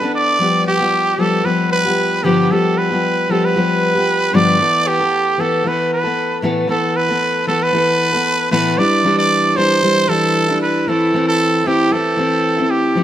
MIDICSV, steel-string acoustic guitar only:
0, 0, Header, 1, 2, 480
1, 0, Start_track
1, 0, Tempo, 523104
1, 369, Time_signature, 4, 2, 24, 8
1, 11961, End_track
2, 0, Start_track
2, 0, Title_t, "Steel-string acoustic guitar"
2, 0, Program_c, 0, 25
2, 13, Note_on_c, 0, 69, 50
2, 30, Note_on_c, 0, 62, 49
2, 37, Note_on_c, 0, 59, 43
2, 360, Note_on_c, 0, 53, 45
2, 365, Note_off_c, 0, 69, 0
2, 366, Note_off_c, 0, 59, 0
2, 370, Note_on_c, 0, 55, 52
2, 374, Note_off_c, 0, 62, 0
2, 381, Note_on_c, 0, 59, 52
2, 385, Note_on_c, 0, 67, 62
2, 719, Note_off_c, 0, 67, 0
2, 728, Note_off_c, 0, 59, 0
2, 730, Note_on_c, 0, 67, 45
2, 737, Note_off_c, 0, 53, 0
2, 739, Note_on_c, 0, 59, 44
2, 742, Note_off_c, 0, 55, 0
2, 752, Note_on_c, 0, 55, 39
2, 760, Note_on_c, 0, 53, 41
2, 1071, Note_off_c, 0, 53, 0
2, 1082, Note_on_c, 0, 53, 50
2, 1084, Note_off_c, 0, 55, 0
2, 1085, Note_off_c, 0, 67, 0
2, 1087, Note_off_c, 0, 59, 0
2, 1095, Note_on_c, 0, 55, 54
2, 1098, Note_on_c, 0, 59, 63
2, 1110, Note_on_c, 0, 67, 58
2, 1311, Note_off_c, 0, 53, 0
2, 1322, Note_off_c, 0, 55, 0
2, 1322, Note_on_c, 0, 53, 51
2, 1330, Note_off_c, 0, 59, 0
2, 1333, Note_on_c, 0, 55, 47
2, 1341, Note_off_c, 0, 67, 0
2, 1341, Note_on_c, 0, 59, 56
2, 1350, Note_on_c, 0, 67, 55
2, 1687, Note_off_c, 0, 67, 0
2, 1697, Note_off_c, 0, 59, 0
2, 1698, Note_on_c, 0, 67, 44
2, 1700, Note_off_c, 0, 53, 0
2, 1705, Note_off_c, 0, 55, 0
2, 1708, Note_on_c, 0, 59, 41
2, 1719, Note_on_c, 0, 55, 41
2, 1726, Note_on_c, 0, 53, 37
2, 2046, Note_off_c, 0, 53, 0
2, 2050, Note_off_c, 0, 67, 0
2, 2051, Note_off_c, 0, 55, 0
2, 2051, Note_on_c, 0, 43, 57
2, 2055, Note_off_c, 0, 59, 0
2, 2055, Note_on_c, 0, 50, 62
2, 2057, Note_on_c, 0, 53, 73
2, 2062, Note_on_c, 0, 55, 75
2, 2067, Note_on_c, 0, 59, 70
2, 2070, Note_on_c, 0, 67, 75
2, 2282, Note_off_c, 0, 53, 0
2, 2292, Note_off_c, 0, 43, 0
2, 2292, Note_off_c, 0, 55, 0
2, 2293, Note_on_c, 0, 53, 50
2, 2294, Note_off_c, 0, 50, 0
2, 2300, Note_off_c, 0, 59, 0
2, 2302, Note_off_c, 0, 67, 0
2, 2303, Note_on_c, 0, 55, 54
2, 2311, Note_on_c, 0, 59, 52
2, 2319, Note_on_c, 0, 67, 54
2, 2655, Note_off_c, 0, 67, 0
2, 2665, Note_off_c, 0, 59, 0
2, 2666, Note_off_c, 0, 53, 0
2, 2666, Note_on_c, 0, 67, 49
2, 2671, Note_off_c, 0, 55, 0
2, 2676, Note_on_c, 0, 59, 41
2, 2684, Note_on_c, 0, 55, 44
2, 2695, Note_on_c, 0, 53, 43
2, 3008, Note_off_c, 0, 53, 0
2, 3014, Note_off_c, 0, 67, 0
2, 3019, Note_off_c, 0, 55, 0
2, 3019, Note_on_c, 0, 53, 53
2, 3020, Note_off_c, 0, 59, 0
2, 3030, Note_on_c, 0, 55, 59
2, 3036, Note_on_c, 0, 59, 58
2, 3044, Note_on_c, 0, 67, 65
2, 3251, Note_off_c, 0, 53, 0
2, 3259, Note_off_c, 0, 55, 0
2, 3262, Note_on_c, 0, 53, 53
2, 3265, Note_off_c, 0, 59, 0
2, 3269, Note_off_c, 0, 67, 0
2, 3270, Note_on_c, 0, 55, 55
2, 3280, Note_on_c, 0, 59, 63
2, 3290, Note_on_c, 0, 67, 53
2, 3615, Note_off_c, 0, 67, 0
2, 3624, Note_off_c, 0, 59, 0
2, 3626, Note_on_c, 0, 67, 47
2, 3631, Note_off_c, 0, 53, 0
2, 3635, Note_off_c, 0, 55, 0
2, 3635, Note_on_c, 0, 59, 45
2, 3644, Note_on_c, 0, 55, 42
2, 3651, Note_on_c, 0, 53, 39
2, 3971, Note_on_c, 0, 43, 72
2, 3972, Note_off_c, 0, 53, 0
2, 3974, Note_off_c, 0, 55, 0
2, 3975, Note_off_c, 0, 67, 0
2, 3976, Note_off_c, 0, 59, 0
2, 3978, Note_on_c, 0, 50, 69
2, 3983, Note_on_c, 0, 53, 70
2, 3985, Note_on_c, 0, 55, 78
2, 3987, Note_on_c, 0, 59, 75
2, 3991, Note_on_c, 0, 67, 82
2, 4212, Note_off_c, 0, 53, 0
2, 4214, Note_off_c, 0, 43, 0
2, 4215, Note_on_c, 0, 52, 51
2, 4217, Note_off_c, 0, 50, 0
2, 4220, Note_off_c, 0, 55, 0
2, 4221, Note_off_c, 0, 59, 0
2, 4223, Note_off_c, 0, 67, 0
2, 4226, Note_on_c, 0, 57, 61
2, 4234, Note_on_c, 0, 59, 61
2, 4239, Note_on_c, 0, 69, 57
2, 4573, Note_off_c, 0, 69, 0
2, 4584, Note_on_c, 0, 69, 49
2, 4587, Note_off_c, 0, 52, 0
2, 4590, Note_off_c, 0, 59, 0
2, 4593, Note_off_c, 0, 57, 0
2, 4601, Note_on_c, 0, 59, 42
2, 4612, Note_on_c, 0, 57, 42
2, 4934, Note_off_c, 0, 69, 0
2, 4936, Note_off_c, 0, 57, 0
2, 4936, Note_on_c, 0, 52, 58
2, 4942, Note_off_c, 0, 59, 0
2, 4947, Note_on_c, 0, 57, 58
2, 4955, Note_on_c, 0, 59, 64
2, 4965, Note_on_c, 0, 69, 67
2, 5165, Note_off_c, 0, 52, 0
2, 5176, Note_on_c, 0, 52, 50
2, 5179, Note_off_c, 0, 57, 0
2, 5185, Note_off_c, 0, 59, 0
2, 5190, Note_off_c, 0, 69, 0
2, 5190, Note_on_c, 0, 57, 51
2, 5198, Note_on_c, 0, 59, 56
2, 5207, Note_on_c, 0, 69, 57
2, 5529, Note_off_c, 0, 69, 0
2, 5540, Note_on_c, 0, 69, 47
2, 5546, Note_off_c, 0, 59, 0
2, 5548, Note_off_c, 0, 52, 0
2, 5555, Note_off_c, 0, 57, 0
2, 5557, Note_on_c, 0, 59, 40
2, 5568, Note_on_c, 0, 57, 38
2, 5892, Note_off_c, 0, 69, 0
2, 5894, Note_on_c, 0, 45, 73
2, 5895, Note_off_c, 0, 57, 0
2, 5900, Note_off_c, 0, 59, 0
2, 5903, Note_on_c, 0, 52, 74
2, 5906, Note_on_c, 0, 57, 70
2, 5910, Note_on_c, 0, 59, 75
2, 5917, Note_on_c, 0, 69, 80
2, 6113, Note_off_c, 0, 52, 0
2, 6124, Note_on_c, 0, 52, 54
2, 6126, Note_off_c, 0, 57, 0
2, 6129, Note_off_c, 0, 59, 0
2, 6135, Note_off_c, 0, 45, 0
2, 6137, Note_on_c, 0, 57, 51
2, 6139, Note_off_c, 0, 69, 0
2, 6140, Note_on_c, 0, 59, 56
2, 6150, Note_on_c, 0, 69, 55
2, 6494, Note_off_c, 0, 69, 0
2, 6502, Note_off_c, 0, 52, 0
2, 6505, Note_on_c, 0, 69, 49
2, 6509, Note_off_c, 0, 57, 0
2, 6510, Note_off_c, 0, 59, 0
2, 6520, Note_on_c, 0, 59, 49
2, 6531, Note_on_c, 0, 57, 43
2, 6854, Note_off_c, 0, 69, 0
2, 6854, Note_on_c, 0, 52, 62
2, 6856, Note_off_c, 0, 57, 0
2, 6862, Note_off_c, 0, 59, 0
2, 6867, Note_on_c, 0, 57, 58
2, 6875, Note_on_c, 0, 59, 64
2, 6880, Note_on_c, 0, 69, 67
2, 7076, Note_off_c, 0, 52, 0
2, 7086, Note_off_c, 0, 57, 0
2, 7087, Note_on_c, 0, 52, 54
2, 7093, Note_off_c, 0, 59, 0
2, 7097, Note_on_c, 0, 57, 58
2, 7102, Note_off_c, 0, 69, 0
2, 7104, Note_on_c, 0, 59, 59
2, 7113, Note_on_c, 0, 69, 66
2, 7442, Note_off_c, 0, 69, 0
2, 7453, Note_on_c, 0, 69, 50
2, 7459, Note_off_c, 0, 59, 0
2, 7463, Note_off_c, 0, 52, 0
2, 7468, Note_off_c, 0, 57, 0
2, 7470, Note_on_c, 0, 59, 48
2, 7483, Note_on_c, 0, 57, 44
2, 7808, Note_off_c, 0, 57, 0
2, 7808, Note_off_c, 0, 69, 0
2, 7812, Note_on_c, 0, 45, 85
2, 7814, Note_off_c, 0, 59, 0
2, 7817, Note_on_c, 0, 52, 84
2, 7819, Note_on_c, 0, 57, 85
2, 7825, Note_on_c, 0, 59, 93
2, 7830, Note_on_c, 0, 69, 78
2, 8042, Note_off_c, 0, 52, 0
2, 8053, Note_off_c, 0, 45, 0
2, 8053, Note_on_c, 0, 52, 54
2, 8057, Note_off_c, 0, 57, 0
2, 8060, Note_off_c, 0, 59, 0
2, 8062, Note_off_c, 0, 69, 0
2, 8064, Note_on_c, 0, 55, 64
2, 8074, Note_on_c, 0, 62, 64
2, 8081, Note_on_c, 0, 64, 65
2, 8277, Note_off_c, 0, 52, 0
2, 8288, Note_on_c, 0, 52, 63
2, 8290, Note_off_c, 0, 55, 0
2, 8297, Note_off_c, 0, 62, 0
2, 8301, Note_on_c, 0, 55, 71
2, 8308, Note_off_c, 0, 64, 0
2, 8308, Note_on_c, 0, 62, 62
2, 8318, Note_on_c, 0, 64, 64
2, 8768, Note_off_c, 0, 52, 0
2, 8771, Note_off_c, 0, 55, 0
2, 8772, Note_on_c, 0, 52, 63
2, 8781, Note_off_c, 0, 62, 0
2, 8782, Note_on_c, 0, 55, 59
2, 8791, Note_on_c, 0, 62, 61
2, 8795, Note_off_c, 0, 64, 0
2, 8799, Note_on_c, 0, 64, 68
2, 9000, Note_off_c, 0, 52, 0
2, 9009, Note_off_c, 0, 55, 0
2, 9011, Note_on_c, 0, 52, 55
2, 9017, Note_off_c, 0, 62, 0
2, 9020, Note_on_c, 0, 55, 64
2, 9026, Note_off_c, 0, 64, 0
2, 9028, Note_on_c, 0, 62, 59
2, 9036, Note_on_c, 0, 64, 57
2, 9240, Note_off_c, 0, 52, 0
2, 9249, Note_off_c, 0, 55, 0
2, 9251, Note_on_c, 0, 52, 56
2, 9260, Note_on_c, 0, 55, 52
2, 9261, Note_off_c, 0, 62, 0
2, 9265, Note_off_c, 0, 64, 0
2, 9273, Note_on_c, 0, 62, 59
2, 9278, Note_on_c, 0, 64, 70
2, 9612, Note_off_c, 0, 64, 0
2, 9624, Note_off_c, 0, 52, 0
2, 9624, Note_on_c, 0, 64, 51
2, 9628, Note_off_c, 0, 62, 0
2, 9629, Note_off_c, 0, 55, 0
2, 9639, Note_on_c, 0, 62, 52
2, 9652, Note_on_c, 0, 55, 45
2, 9972, Note_off_c, 0, 64, 0
2, 9973, Note_on_c, 0, 52, 60
2, 9979, Note_off_c, 0, 55, 0
2, 9980, Note_off_c, 0, 62, 0
2, 9983, Note_on_c, 0, 57, 61
2, 9989, Note_on_c, 0, 60, 58
2, 9998, Note_on_c, 0, 64, 59
2, 10207, Note_off_c, 0, 52, 0
2, 10214, Note_off_c, 0, 57, 0
2, 10218, Note_on_c, 0, 52, 68
2, 10221, Note_off_c, 0, 60, 0
2, 10225, Note_off_c, 0, 64, 0
2, 10225, Note_on_c, 0, 57, 64
2, 10233, Note_on_c, 0, 60, 65
2, 10242, Note_on_c, 0, 64, 67
2, 10678, Note_off_c, 0, 52, 0
2, 10689, Note_on_c, 0, 52, 57
2, 10697, Note_off_c, 0, 57, 0
2, 10701, Note_on_c, 0, 57, 64
2, 10706, Note_off_c, 0, 60, 0
2, 10707, Note_off_c, 0, 64, 0
2, 10709, Note_on_c, 0, 60, 64
2, 10717, Note_on_c, 0, 64, 62
2, 10921, Note_off_c, 0, 52, 0
2, 10930, Note_off_c, 0, 57, 0
2, 10932, Note_on_c, 0, 52, 56
2, 10940, Note_off_c, 0, 60, 0
2, 10941, Note_on_c, 0, 57, 56
2, 10944, Note_off_c, 0, 64, 0
2, 10952, Note_on_c, 0, 60, 63
2, 10958, Note_on_c, 0, 64, 65
2, 11153, Note_off_c, 0, 52, 0
2, 11161, Note_off_c, 0, 57, 0
2, 11164, Note_on_c, 0, 52, 59
2, 11172, Note_on_c, 0, 57, 57
2, 11173, Note_off_c, 0, 60, 0
2, 11180, Note_off_c, 0, 64, 0
2, 11184, Note_on_c, 0, 60, 61
2, 11191, Note_on_c, 0, 64, 59
2, 11530, Note_off_c, 0, 64, 0
2, 11539, Note_off_c, 0, 52, 0
2, 11541, Note_on_c, 0, 64, 50
2, 11543, Note_off_c, 0, 57, 0
2, 11544, Note_off_c, 0, 60, 0
2, 11555, Note_on_c, 0, 60, 49
2, 11566, Note_on_c, 0, 57, 49
2, 11886, Note_on_c, 0, 53, 60
2, 11887, Note_off_c, 0, 57, 0
2, 11889, Note_off_c, 0, 64, 0
2, 11896, Note_off_c, 0, 60, 0
2, 11898, Note_on_c, 0, 57, 59
2, 11906, Note_on_c, 0, 60, 66
2, 11913, Note_on_c, 0, 67, 60
2, 11961, Note_off_c, 0, 53, 0
2, 11961, Note_off_c, 0, 57, 0
2, 11961, Note_off_c, 0, 60, 0
2, 11961, Note_off_c, 0, 67, 0
2, 11961, End_track
0, 0, End_of_file